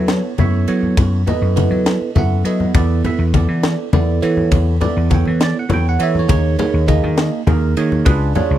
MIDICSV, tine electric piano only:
0, 0, Header, 1, 2, 480
1, 0, Start_track
1, 0, Tempo, 589971
1, 798, Time_signature, 6, 3, 24, 8
1, 6985, End_track
2, 0, Start_track
2, 0, Title_t, "Tine electric piano"
2, 0, Program_c, 0, 4
2, 0, Note_on_c, 0, 59, 58
2, 0, Note_on_c, 0, 64, 62
2, 0, Note_on_c, 0, 69, 56
2, 0, Note_on_c, 0, 71, 69
2, 77, Note_on_c, 0, 73, 63
2, 265, Note_off_c, 0, 59, 0
2, 265, Note_off_c, 0, 69, 0
2, 266, Note_off_c, 0, 64, 0
2, 266, Note_off_c, 0, 71, 0
2, 307, Note_off_c, 0, 73, 0
2, 308, Note_on_c, 0, 59, 66
2, 309, Note_on_c, 0, 69, 55
2, 313, Note_on_c, 0, 64, 59
2, 316, Note_on_c, 0, 73, 74
2, 326, Note_on_c, 0, 76, 91
2, 529, Note_off_c, 0, 59, 0
2, 529, Note_off_c, 0, 69, 0
2, 531, Note_off_c, 0, 64, 0
2, 533, Note_off_c, 0, 73, 0
2, 552, Note_on_c, 0, 64, 54
2, 553, Note_on_c, 0, 59, 69
2, 555, Note_off_c, 0, 76, 0
2, 555, Note_on_c, 0, 69, 60
2, 555, Note_on_c, 0, 73, 73
2, 986, Note_off_c, 0, 64, 0
2, 987, Note_off_c, 0, 59, 0
2, 988, Note_off_c, 0, 69, 0
2, 988, Note_off_c, 0, 73, 0
2, 1030, Note_on_c, 0, 64, 53
2, 1031, Note_on_c, 0, 59, 65
2, 1035, Note_on_c, 0, 69, 59
2, 1036, Note_on_c, 0, 71, 65
2, 1047, Note_on_c, 0, 75, 76
2, 1250, Note_off_c, 0, 64, 0
2, 1251, Note_off_c, 0, 59, 0
2, 1253, Note_off_c, 0, 69, 0
2, 1253, Note_off_c, 0, 71, 0
2, 1268, Note_on_c, 0, 59, 61
2, 1270, Note_on_c, 0, 64, 57
2, 1271, Note_on_c, 0, 71, 68
2, 1272, Note_on_c, 0, 69, 51
2, 1705, Note_off_c, 0, 59, 0
2, 1706, Note_off_c, 0, 64, 0
2, 1706, Note_off_c, 0, 71, 0
2, 1707, Note_off_c, 0, 69, 0
2, 1731, Note_off_c, 0, 75, 0
2, 1749, Note_on_c, 0, 59, 59
2, 1753, Note_on_c, 0, 69, 59
2, 1755, Note_on_c, 0, 76, 74
2, 1756, Note_on_c, 0, 64, 58
2, 1775, Note_on_c, 0, 78, 79
2, 1970, Note_off_c, 0, 59, 0
2, 1972, Note_off_c, 0, 69, 0
2, 1973, Note_off_c, 0, 64, 0
2, 1973, Note_off_c, 0, 76, 0
2, 1994, Note_on_c, 0, 59, 67
2, 1998, Note_on_c, 0, 64, 60
2, 2001, Note_on_c, 0, 69, 58
2, 2004, Note_on_c, 0, 75, 71
2, 2215, Note_off_c, 0, 78, 0
2, 2225, Note_off_c, 0, 59, 0
2, 2229, Note_off_c, 0, 64, 0
2, 2231, Note_off_c, 0, 69, 0
2, 2234, Note_on_c, 0, 59, 70
2, 2238, Note_on_c, 0, 64, 66
2, 2240, Note_on_c, 0, 74, 85
2, 2241, Note_on_c, 0, 69, 69
2, 2242, Note_off_c, 0, 75, 0
2, 2453, Note_off_c, 0, 59, 0
2, 2455, Note_off_c, 0, 64, 0
2, 2455, Note_off_c, 0, 74, 0
2, 2456, Note_off_c, 0, 69, 0
2, 2477, Note_on_c, 0, 59, 58
2, 2478, Note_on_c, 0, 64, 58
2, 2481, Note_on_c, 0, 69, 51
2, 2483, Note_on_c, 0, 71, 70
2, 2491, Note_on_c, 0, 76, 83
2, 2632, Note_off_c, 0, 76, 0
2, 2694, Note_off_c, 0, 59, 0
2, 2695, Note_off_c, 0, 64, 0
2, 2696, Note_off_c, 0, 69, 0
2, 2697, Note_off_c, 0, 71, 0
2, 2725, Note_on_c, 0, 59, 62
2, 2725, Note_on_c, 0, 64, 54
2, 2728, Note_on_c, 0, 69, 56
2, 2733, Note_on_c, 0, 74, 68
2, 3154, Note_off_c, 0, 59, 0
2, 3154, Note_off_c, 0, 64, 0
2, 3155, Note_off_c, 0, 69, 0
2, 3158, Note_off_c, 0, 74, 0
2, 3197, Note_on_c, 0, 59, 71
2, 3199, Note_on_c, 0, 64, 70
2, 3201, Note_on_c, 0, 74, 85
2, 3202, Note_on_c, 0, 69, 70
2, 3414, Note_off_c, 0, 59, 0
2, 3415, Note_off_c, 0, 64, 0
2, 3416, Note_off_c, 0, 69, 0
2, 3416, Note_off_c, 0, 74, 0
2, 3436, Note_on_c, 0, 64, 74
2, 3436, Note_on_c, 0, 69, 77
2, 3436, Note_on_c, 0, 73, 84
2, 3437, Note_on_c, 0, 59, 73
2, 3869, Note_off_c, 0, 64, 0
2, 3869, Note_off_c, 0, 69, 0
2, 3869, Note_off_c, 0, 73, 0
2, 3870, Note_off_c, 0, 59, 0
2, 3910, Note_on_c, 0, 59, 72
2, 3912, Note_on_c, 0, 69, 67
2, 3914, Note_on_c, 0, 64, 69
2, 3917, Note_on_c, 0, 74, 85
2, 4131, Note_off_c, 0, 59, 0
2, 4131, Note_off_c, 0, 69, 0
2, 4133, Note_off_c, 0, 64, 0
2, 4134, Note_off_c, 0, 74, 0
2, 4149, Note_on_c, 0, 64, 59
2, 4150, Note_on_c, 0, 59, 65
2, 4155, Note_on_c, 0, 69, 58
2, 4159, Note_on_c, 0, 73, 73
2, 4184, Note_on_c, 0, 79, 74
2, 4289, Note_off_c, 0, 79, 0
2, 4316, Note_on_c, 0, 71, 60
2, 4415, Note_off_c, 0, 71, 0
2, 4420, Note_on_c, 0, 74, 89
2, 4527, Note_off_c, 0, 74, 0
2, 4550, Note_on_c, 0, 78, 78
2, 4586, Note_off_c, 0, 59, 0
2, 4586, Note_off_c, 0, 64, 0
2, 4589, Note_off_c, 0, 69, 0
2, 4591, Note_off_c, 0, 73, 0
2, 4630, Note_on_c, 0, 59, 65
2, 4630, Note_on_c, 0, 64, 61
2, 4632, Note_on_c, 0, 69, 66
2, 4633, Note_on_c, 0, 73, 73
2, 4652, Note_off_c, 0, 78, 0
2, 4667, Note_on_c, 0, 79, 103
2, 4770, Note_off_c, 0, 79, 0
2, 4791, Note_on_c, 0, 78, 88
2, 4851, Note_off_c, 0, 59, 0
2, 4851, Note_off_c, 0, 64, 0
2, 4852, Note_off_c, 0, 69, 0
2, 4852, Note_off_c, 0, 73, 0
2, 4873, Note_on_c, 0, 59, 68
2, 4875, Note_on_c, 0, 64, 61
2, 4877, Note_on_c, 0, 73, 74
2, 4879, Note_on_c, 0, 69, 63
2, 4892, Note_off_c, 0, 78, 0
2, 4907, Note_on_c, 0, 76, 88
2, 5011, Note_off_c, 0, 76, 0
2, 5029, Note_off_c, 0, 73, 0
2, 5039, Note_on_c, 0, 73, 76
2, 5108, Note_off_c, 0, 73, 0
2, 5109, Note_on_c, 0, 58, 77
2, 5113, Note_on_c, 0, 63, 74
2, 5113, Note_on_c, 0, 68, 72
2, 5116, Note_off_c, 0, 59, 0
2, 5118, Note_off_c, 0, 64, 0
2, 5118, Note_on_c, 0, 73, 89
2, 5119, Note_off_c, 0, 69, 0
2, 5330, Note_off_c, 0, 58, 0
2, 5332, Note_off_c, 0, 63, 0
2, 5332, Note_off_c, 0, 68, 0
2, 5335, Note_off_c, 0, 73, 0
2, 5356, Note_on_c, 0, 58, 65
2, 5359, Note_on_c, 0, 63, 64
2, 5361, Note_on_c, 0, 73, 75
2, 5363, Note_on_c, 0, 68, 60
2, 5574, Note_off_c, 0, 58, 0
2, 5575, Note_off_c, 0, 63, 0
2, 5576, Note_off_c, 0, 73, 0
2, 5577, Note_off_c, 0, 68, 0
2, 5591, Note_on_c, 0, 58, 81
2, 5596, Note_on_c, 0, 63, 75
2, 5598, Note_on_c, 0, 68, 78
2, 5598, Note_on_c, 0, 75, 88
2, 6027, Note_off_c, 0, 58, 0
2, 6029, Note_off_c, 0, 63, 0
2, 6030, Note_off_c, 0, 68, 0
2, 6030, Note_off_c, 0, 75, 0
2, 6076, Note_on_c, 0, 63, 71
2, 6079, Note_on_c, 0, 58, 84
2, 6079, Note_on_c, 0, 68, 78
2, 6083, Note_on_c, 0, 70, 92
2, 6294, Note_off_c, 0, 63, 0
2, 6295, Note_off_c, 0, 58, 0
2, 6295, Note_off_c, 0, 68, 0
2, 6297, Note_off_c, 0, 70, 0
2, 6321, Note_on_c, 0, 58, 79
2, 6325, Note_on_c, 0, 63, 84
2, 6325, Note_on_c, 0, 68, 79
2, 6327, Note_on_c, 0, 73, 84
2, 6545, Note_off_c, 0, 68, 0
2, 6551, Note_on_c, 0, 65, 85
2, 6552, Note_on_c, 0, 62, 97
2, 6555, Note_on_c, 0, 68, 87
2, 6558, Note_on_c, 0, 71, 102
2, 6561, Note_off_c, 0, 58, 0
2, 6563, Note_off_c, 0, 63, 0
2, 6564, Note_off_c, 0, 73, 0
2, 6771, Note_off_c, 0, 65, 0
2, 6772, Note_off_c, 0, 62, 0
2, 6773, Note_off_c, 0, 68, 0
2, 6774, Note_off_c, 0, 71, 0
2, 6796, Note_on_c, 0, 62, 83
2, 6797, Note_on_c, 0, 68, 69
2, 6798, Note_on_c, 0, 65, 77
2, 6800, Note_on_c, 0, 73, 86
2, 6985, Note_off_c, 0, 62, 0
2, 6985, Note_off_c, 0, 65, 0
2, 6985, Note_off_c, 0, 68, 0
2, 6985, Note_off_c, 0, 73, 0
2, 6985, End_track
0, 0, End_of_file